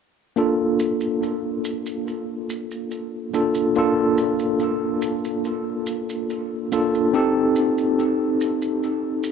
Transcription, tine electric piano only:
0, 0, Header, 1, 2, 480
1, 0, Start_track
1, 0, Tempo, 845070
1, 214, Time_signature, 4, 2, 24, 8
1, 5293, End_track
2, 0, Start_track
2, 0, Title_t, "Tine electric piano"
2, 0, Program_c, 0, 4
2, 205, Note_on_c, 0, 58, 70
2, 210, Note_on_c, 0, 62, 60
2, 215, Note_on_c, 0, 65, 63
2, 217, Note_on_c, 0, 69, 71
2, 315, Control_c, 0, 64, 127
2, 1862, Note_off_c, 0, 58, 0
2, 1864, Note_off_c, 0, 62, 0
2, 1867, Note_off_c, 0, 65, 0
2, 1868, Note_off_c, 0, 69, 0
2, 1895, Note_on_c, 0, 58, 62
2, 1896, Note_on_c, 0, 62, 60
2, 1899, Note_on_c, 0, 65, 60
2, 1904, Note_on_c, 0, 69, 75
2, 2107, Note_off_c, 0, 58, 0
2, 2108, Note_off_c, 0, 62, 0
2, 2109, Note_off_c, 0, 65, 0
2, 2111, Note_off_c, 0, 69, 0
2, 2136, Note_on_c, 0, 58, 77
2, 2139, Note_on_c, 0, 62, 70
2, 2143, Note_on_c, 0, 65, 69
2, 2149, Note_on_c, 0, 69, 86
2, 3788, Note_off_c, 0, 58, 0
2, 3789, Note_off_c, 0, 62, 0
2, 3791, Note_off_c, 0, 65, 0
2, 3794, Note_off_c, 0, 69, 0
2, 3817, Note_on_c, 0, 58, 76
2, 3821, Note_on_c, 0, 62, 67
2, 3822, Note_on_c, 0, 65, 69
2, 3824, Note_on_c, 0, 69, 87
2, 4028, Note_off_c, 0, 58, 0
2, 4030, Note_off_c, 0, 62, 0
2, 4031, Note_off_c, 0, 65, 0
2, 4032, Note_off_c, 0, 69, 0
2, 4051, Note_on_c, 0, 60, 71
2, 4054, Note_on_c, 0, 63, 68
2, 4058, Note_on_c, 0, 67, 72
2, 4062, Control_c, 0, 64, 0
2, 4063, Note_on_c, 0, 69, 83
2, 4161, Control_c, 0, 64, 127
2, 5293, Note_off_c, 0, 60, 0
2, 5293, Note_off_c, 0, 63, 0
2, 5293, Note_off_c, 0, 67, 0
2, 5293, Note_off_c, 0, 69, 0
2, 5293, End_track
0, 0, End_of_file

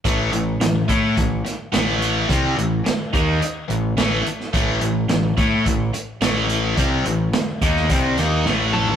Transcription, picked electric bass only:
0, 0, Header, 1, 3, 480
1, 0, Start_track
1, 0, Tempo, 560748
1, 39, Time_signature, 4, 2, 24, 8
1, 7670, End_track
2, 0, Start_track
2, 0, Title_t, "Picked electric bass"
2, 0, Program_c, 0, 34
2, 41, Note_on_c, 0, 33, 87
2, 263, Note_off_c, 0, 33, 0
2, 278, Note_on_c, 0, 33, 77
2, 501, Note_off_c, 0, 33, 0
2, 518, Note_on_c, 0, 33, 77
2, 741, Note_off_c, 0, 33, 0
2, 761, Note_on_c, 0, 45, 95
2, 983, Note_off_c, 0, 45, 0
2, 1007, Note_on_c, 0, 33, 74
2, 1226, Note_off_c, 0, 33, 0
2, 1480, Note_on_c, 0, 33, 81
2, 1925, Note_off_c, 0, 33, 0
2, 1965, Note_on_c, 0, 36, 88
2, 2185, Note_off_c, 0, 36, 0
2, 2200, Note_on_c, 0, 33, 80
2, 2422, Note_off_c, 0, 33, 0
2, 2686, Note_on_c, 0, 39, 101
2, 2905, Note_off_c, 0, 39, 0
2, 3163, Note_on_c, 0, 33, 82
2, 3383, Note_off_c, 0, 33, 0
2, 3395, Note_on_c, 0, 33, 87
2, 3619, Note_off_c, 0, 33, 0
2, 3882, Note_on_c, 0, 33, 91
2, 4102, Note_off_c, 0, 33, 0
2, 4120, Note_on_c, 0, 33, 78
2, 4341, Note_off_c, 0, 33, 0
2, 4355, Note_on_c, 0, 33, 70
2, 4578, Note_off_c, 0, 33, 0
2, 4602, Note_on_c, 0, 45, 97
2, 4822, Note_off_c, 0, 45, 0
2, 4844, Note_on_c, 0, 33, 78
2, 5063, Note_off_c, 0, 33, 0
2, 5320, Note_on_c, 0, 33, 86
2, 5764, Note_off_c, 0, 33, 0
2, 5802, Note_on_c, 0, 36, 87
2, 6022, Note_off_c, 0, 36, 0
2, 6042, Note_on_c, 0, 33, 73
2, 6262, Note_off_c, 0, 33, 0
2, 6521, Note_on_c, 0, 39, 93
2, 6741, Note_off_c, 0, 39, 0
2, 6759, Note_on_c, 0, 36, 85
2, 6980, Note_off_c, 0, 36, 0
2, 7003, Note_on_c, 0, 39, 95
2, 7223, Note_off_c, 0, 39, 0
2, 7238, Note_on_c, 0, 33, 80
2, 7670, Note_off_c, 0, 33, 0
2, 7670, End_track
3, 0, Start_track
3, 0, Title_t, "Muted picked electric bass strokes"
3, 1245, Note_on_c, 9, 29, 40
3, 1330, Note_off_c, 9, 29, 0
3, 2442, Note_on_c, 9, 29, 37
3, 2528, Note_off_c, 9, 29, 0
3, 2922, Note_on_c, 9, 29, 36
3, 3008, Note_off_c, 9, 29, 0
3, 3635, Note_on_c, 9, 29, 38
3, 3720, Note_off_c, 9, 29, 0
3, 5084, Note_on_c, 9, 29, 41
3, 5170, Note_off_c, 9, 29, 0
3, 6289, Note_on_c, 9, 29, 39
3, 6375, Note_off_c, 9, 29, 0
3, 7670, End_track
0, 0, End_of_file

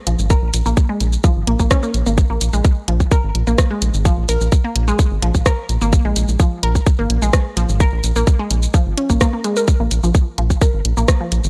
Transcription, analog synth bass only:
0, 0, Header, 1, 2, 480
1, 0, Start_track
1, 0, Tempo, 468750
1, 309, Time_signature, 4, 2, 24, 8
1, 11772, End_track
2, 0, Start_track
2, 0, Title_t, "Analog synth bass"
2, 0, Program_c, 0, 38
2, 70, Note_on_c, 0, 34, 95
2, 154, Note_off_c, 0, 34, 0
2, 195, Note_on_c, 0, 32, 97
2, 353, Note_off_c, 0, 32, 0
2, 435, Note_on_c, 0, 34, 101
2, 512, Note_off_c, 0, 34, 0
2, 550, Note_on_c, 0, 34, 99
2, 634, Note_off_c, 0, 34, 0
2, 675, Note_on_c, 0, 34, 88
2, 752, Note_off_c, 0, 34, 0
2, 1030, Note_on_c, 0, 34, 102
2, 1194, Note_off_c, 0, 34, 0
2, 1394, Note_on_c, 0, 32, 82
2, 1472, Note_off_c, 0, 32, 0
2, 1510, Note_on_c, 0, 34, 97
2, 1594, Note_off_c, 0, 34, 0
2, 1635, Note_on_c, 0, 34, 89
2, 1712, Note_off_c, 0, 34, 0
2, 1989, Note_on_c, 0, 34, 100
2, 2073, Note_off_c, 0, 34, 0
2, 2114, Note_on_c, 0, 32, 101
2, 2272, Note_off_c, 0, 32, 0
2, 2354, Note_on_c, 0, 34, 94
2, 2431, Note_off_c, 0, 34, 0
2, 2469, Note_on_c, 0, 34, 94
2, 2553, Note_off_c, 0, 34, 0
2, 2594, Note_on_c, 0, 34, 91
2, 2671, Note_off_c, 0, 34, 0
2, 2950, Note_on_c, 0, 34, 100
2, 3114, Note_off_c, 0, 34, 0
2, 3314, Note_on_c, 0, 32, 86
2, 3391, Note_off_c, 0, 32, 0
2, 3428, Note_on_c, 0, 34, 97
2, 3513, Note_off_c, 0, 34, 0
2, 3554, Note_on_c, 0, 34, 90
2, 3631, Note_off_c, 0, 34, 0
2, 3909, Note_on_c, 0, 34, 96
2, 3993, Note_off_c, 0, 34, 0
2, 4034, Note_on_c, 0, 32, 104
2, 4192, Note_off_c, 0, 32, 0
2, 4274, Note_on_c, 0, 34, 99
2, 4352, Note_off_c, 0, 34, 0
2, 4389, Note_on_c, 0, 34, 100
2, 4473, Note_off_c, 0, 34, 0
2, 4514, Note_on_c, 0, 34, 91
2, 4592, Note_off_c, 0, 34, 0
2, 4869, Note_on_c, 0, 34, 100
2, 5034, Note_off_c, 0, 34, 0
2, 5234, Note_on_c, 0, 32, 86
2, 5312, Note_off_c, 0, 32, 0
2, 5349, Note_on_c, 0, 34, 101
2, 5433, Note_off_c, 0, 34, 0
2, 5475, Note_on_c, 0, 34, 90
2, 5552, Note_off_c, 0, 34, 0
2, 5829, Note_on_c, 0, 34, 94
2, 5913, Note_off_c, 0, 34, 0
2, 5954, Note_on_c, 0, 32, 101
2, 6112, Note_off_c, 0, 32, 0
2, 6194, Note_on_c, 0, 34, 105
2, 6272, Note_off_c, 0, 34, 0
2, 6309, Note_on_c, 0, 34, 100
2, 6393, Note_off_c, 0, 34, 0
2, 6434, Note_on_c, 0, 34, 92
2, 6512, Note_off_c, 0, 34, 0
2, 6789, Note_on_c, 0, 34, 99
2, 6954, Note_off_c, 0, 34, 0
2, 7154, Note_on_c, 0, 32, 86
2, 7231, Note_off_c, 0, 32, 0
2, 7269, Note_on_c, 0, 34, 104
2, 7353, Note_off_c, 0, 34, 0
2, 7394, Note_on_c, 0, 34, 89
2, 7471, Note_off_c, 0, 34, 0
2, 7749, Note_on_c, 0, 34, 96
2, 7833, Note_off_c, 0, 34, 0
2, 7874, Note_on_c, 0, 32, 104
2, 8032, Note_off_c, 0, 32, 0
2, 8115, Note_on_c, 0, 34, 105
2, 8192, Note_off_c, 0, 34, 0
2, 8229, Note_on_c, 0, 34, 96
2, 8313, Note_off_c, 0, 34, 0
2, 8354, Note_on_c, 0, 34, 89
2, 8431, Note_off_c, 0, 34, 0
2, 8709, Note_on_c, 0, 34, 99
2, 8874, Note_off_c, 0, 34, 0
2, 9074, Note_on_c, 0, 32, 86
2, 9151, Note_off_c, 0, 32, 0
2, 9315, Note_on_c, 0, 34, 78
2, 9392, Note_off_c, 0, 34, 0
2, 10034, Note_on_c, 0, 34, 100
2, 10112, Note_off_c, 0, 34, 0
2, 10149, Note_on_c, 0, 34, 98
2, 10233, Note_off_c, 0, 34, 0
2, 10275, Note_on_c, 0, 34, 94
2, 10352, Note_off_c, 0, 34, 0
2, 10630, Note_on_c, 0, 34, 103
2, 10794, Note_off_c, 0, 34, 0
2, 10995, Note_on_c, 0, 32, 87
2, 11072, Note_off_c, 0, 32, 0
2, 11110, Note_on_c, 0, 34, 98
2, 11194, Note_off_c, 0, 34, 0
2, 11235, Note_on_c, 0, 34, 89
2, 11312, Note_off_c, 0, 34, 0
2, 11590, Note_on_c, 0, 34, 100
2, 11674, Note_off_c, 0, 34, 0
2, 11715, Note_on_c, 0, 32, 101
2, 11772, Note_off_c, 0, 32, 0
2, 11772, End_track
0, 0, End_of_file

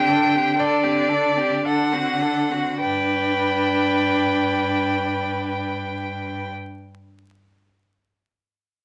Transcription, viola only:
0, 0, Header, 1, 2, 480
1, 0, Start_track
1, 0, Key_signature, 1, "major"
1, 0, Tempo, 978793
1, 286, Tempo, 1048951
1, 766, Tempo, 1142857
1, 1248, Time_signature, 3, 2, 24, 8
1, 2206, Tempo, 1121495
1, 3826, End_track
2, 0, Start_track
2, 0, Title_t, "Viola"
2, 0, Program_c, 0, 41
2, 0, Note_on_c, 0, 60, 90
2, 47, Note_on_c, 0, 62, 81
2, 54, Note_off_c, 0, 60, 0
2, 171, Note_on_c, 0, 60, 80
2, 178, Note_off_c, 0, 62, 0
2, 289, Note_off_c, 0, 60, 0
2, 291, Note_on_c, 0, 62, 89
2, 403, Note_on_c, 0, 60, 81
2, 410, Note_off_c, 0, 62, 0
2, 516, Note_on_c, 0, 62, 85
2, 523, Note_off_c, 0, 60, 0
2, 641, Note_on_c, 0, 60, 76
2, 648, Note_off_c, 0, 62, 0
2, 765, Note_off_c, 0, 60, 0
2, 767, Note_on_c, 0, 62, 81
2, 891, Note_on_c, 0, 60, 74
2, 897, Note_off_c, 0, 62, 0
2, 1008, Note_on_c, 0, 62, 72
2, 1015, Note_off_c, 0, 60, 0
2, 1128, Note_on_c, 0, 60, 67
2, 1134, Note_off_c, 0, 62, 0
2, 1245, Note_off_c, 0, 60, 0
2, 1247, Note_on_c, 0, 62, 95
2, 2809, Note_off_c, 0, 62, 0
2, 3826, End_track
0, 0, End_of_file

